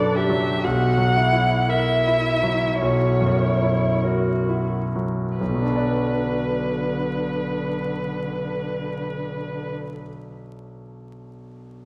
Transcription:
Already playing: grand piano F#2 F#3 D4 B4, cello A4, violin D5
0.14 cello G4, violin E5
0.30 grand piano F#3
0.64 grand piano B1, cello F#4, violin F#5
0.98 grand piano F#3
1.16 cello E4
1.33 grand piano E4
1.69 cello E4, grand piano A#4, violin E5
2.07 grand piano E4
2.43 grand piano F#3
2.81 grand piano B1, cello F#4, violin C#5
3.21 grand piano F#2
3.43 cello E4
3.63 grand piano E4
4.03 cello F#4, grand piano A#4
4.49 grand piano E4
4.96 grand piano F#3
5.38 grand piano B1, cello D3, violin B4
5.48 grand piano B2
5.54 grand piano F#3
5.62 grand piano D4
5.69 grand piano B4
5.76 grand piano D5

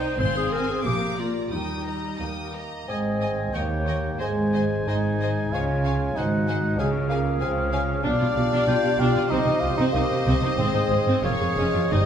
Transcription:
Already playing: viola section D#4, clarinet C5, violin section C5 G5
0.19 double bass section G#1, cello section G#2, viola section C4, violin section G#4 F5 C6, clarinet C5
0.37 clarinet G#4
0.52 clarinet A#4, violin section C5 G#5
0.70 clarinet G#4
0.84 double bass section A#1, cello section A#2, viola section A#3, clarinet G4, violin section A#4 F5 D6
1.18 clarinet F4, violin section D5 A#5
1.51 double bass section D#2, cello section D#2, viola section G3, clarinet D#4, violin section A#4 G5 D#6
1.87 violin section D#5 A#5
2.20 double bass section D#2, cello section D#2, bassoon A#3, violin section A#4 G5 D#6
2.53 violin section D#5 A#5
2.88 double bass section G#1, cello section G#2, bassoon C4, french horn section G#4 C5, violin section D#5 G#5, clarinet D#5, viola section D#5, oboe G#5
3.21 viola section D#5, violin section D#5 G#5
3.54 double bass section D#2, cello section D#2, bassoon A#3, french horn section G4 C#5, viola section C#5, clarinet C#5, violin section D#5 G5, oboe G5
3.86 viola section C#5, violin section D#5 G5
4.19 double bass section G#1, cello section G#2, bassoon G#3, french horn section G#4 C5, viola section C5, clarinet C5, violin section D#5 G#5, oboe G#5
4.53 viola section C5, violin section D#5 G#5
4.87 double bass section G#1, cello section G#2, bassoon D#4, viola section C5, violin section D#5 G#5
5.22 viola section C5, violin section D#5 G#5
5.53 double bass section C#2, cello section C#3, bassoon F4, french horn section C#5, viola section C#5, clarinet C#5, violin section F5 G#5
5.85 viola section C#5, violin section F5 G#5
6.16 double bass section G#1, cello section G#2, bassoon D#4, french horn section F#4 C5, viola section C5, clarinet C5, violin section F#5 G#5, oboe F#5
6.47 viola section C5, violin section F#5 G#5
6.78 double bass section C#2, cello section C#3, bassoon C#4, french horn section F4 G#4, clarinet G#4, viola section G#4, violin section F5 G#5, oboe F5
7.10 bassoon A#3, viola section G#4, violin section F5 G#5
7.40 double bass section C#2, cello section C#3, bassoon C4, viola section G#4, violin section F5 G#5
7.72 bassoon C#4, viola section G#4, violin section F5 G#5
8.03 double bass section B1, cello section B2, bassoon D4, viola section D4, french horn section F4 G4, clarinet G4, violin section D5 F5, oboe F5
8.20 cello section B2, viola section F4
8.36 double bass section B1, cello section B2, viola section G4
8.52 cello section B2, viola section D4
8.67 double bass section B1, cello section B2, clarinet F4, viola section F4, oboe G5
8.84 cello section B2, viola section G4
8.98 double bass section B1, cello section B2, viola section D4, bassoon G4, oboe F5
9.15 cello section B2, viola section F4
9.29 double bass section C2, cello section C3, viola section C4, bassoon D#4, clarinet G4, french horn section G4 C5, violin section C5 D#5, oboe D#5
9.47 cello section C3, viola section D#4
9.61 double bass section C2, cello section C3, bassoon F4, viola section G4
9.78 cello section C3, viola section C4, bassoon D#4
9.93 double bass section C2, cello section C3, bassoon A#3, viola section D#4, clarinet G4, oboe D#5
10.11 cello section C3, viola section G4
10.26 double bass section C2, cello section C3, viola section C4
10.43 cello section C3, viola section D#4
10.58 double bass section G#1, cello section G#2, bassoon C4, viola section C4, clarinet G#4, french horn section G#4 C5, oboe D#5
10.74 cello section G#2, viola section D#4
10.90 double bass section G#1, cello section G#2, viola section G#4
11.06 cello section G#2, viola section C4
11.22 double bass section F1, cello section F2, bassoon A#3, viola section F4, clarinet G#4, french horn section G#4 C#5, violin section C#5 F5, oboe C#5
11.40 cello section F2, viola section G#4
11.56 double bass section F1, cello section F2, bassoon G#3, viola section C#4
11.74 cello section F2, viola section F4
11.91 double bass section G1, cello section G2, bassoon G3, viola section D#4, clarinet C5, french horn section C5 D#5, violin section D#5, oboe D#5

